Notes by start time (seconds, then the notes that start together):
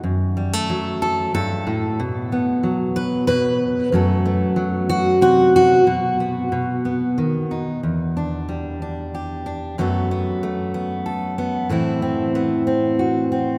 0.03 F#2
0.37 G3
0.53 A3
0.70 F#3
1.02 A4
1.34 G2 A4
1.67 A2
2.00 B2
2.32 B3
2.63 F#3
2.96 B4
3.27 B2 B4
3.92 F#2 F#3 A3 B3 A4
4.26 A3
4.56 F#3
4.89 F#4
5.21 C3 F#4
5.56 F#4
5.87 B2
6.20 B3
6.52 B2
6.85 B3
7.18 D#3
7.51 D#4
7.83 E2
8.17 D4
8.49 G3
8.82 D4
9.15 G4
9.46 D4
9.78 F#2 F#3 A3 B3 A4
10.11 B3
10.43 A3
10.74 B3
11.06 A4
11.38 B3
11.69 A2 E3 B3 C4 E4
12.02 C4
12.35 B3
12.67 C4
12.99 F#4
13.32 C4